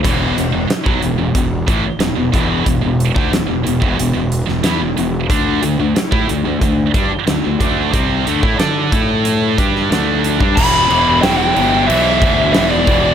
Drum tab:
CC |x---------------|----------------|----------------|----------------|
HH |x-x-x-x-x-x-x-x-|x-x-x-x-x-x-x-x-|x-x-x-x-x-x-x-x-|x-x-x-x-x-x-x-x-|
SD |----o-------o---|----o------oo---|----o-------o---|----o------oo---|
BD |o----o--o-o---o-|o--o---o--------|o----o--o-o---o-|o--o--o---o----o|

CC |x-x-x-x-x-x-x-x-|
HH |----------------|
SD |----o-------o---|
BD |o---------o---o-|